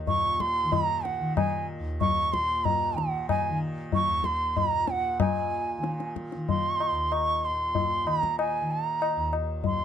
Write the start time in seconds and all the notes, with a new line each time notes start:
Already playing: D#2 D#3
0.06 A#2 C#6, tabla tin, tabla ge
0.40 C6, tabla ke
0.64 D#3
0.72 A#5, tabla tin, tabla ge
1.05 F#5, tabla te
1.20 D#3
1.37 G#5, tabla na, tabla ge
1.79 D#2
2.01 C#6, tabla tin, tabla ge
2.33 A#2 C6, tabla ke
2.64 A#5, tabla tin, tabla ge
2.94 D#3 F#5, tabla te
3.29 G#5, tabla na, tabla ge
3.49 D#3
3.92 C#6, tabla tin, tabla ge
4.06 D#2
4.24 C6, tabla ke
4.57 A#5, tabla tin, tabla ge
4.64 A#2
4.88 F#5, tabla te
5.20 A#2 G#5, tabla na, tabla ge
5.78 D#3
5.84 tabla te
6.00 tabla te
6.16 tabla ke
6.32 D#3, tabla te
6.49 C6, tabla tin, tabla ge
6.80 tabla na
6.91 D#2
7.12 C#6, tabla na
7.45 C6
7.50 A#2
7.75 tabla tin, tabla ge
8.05 D#3 A#5, tabla na
8.23 tabla ke
8.39 G#5, tabla na
8.61 D#3
8.71 A#5
9.02 tabla na
9.17 D#2
9.33 tabla na
9.64 C6, tabla tin, tabla ge
9.73 A#2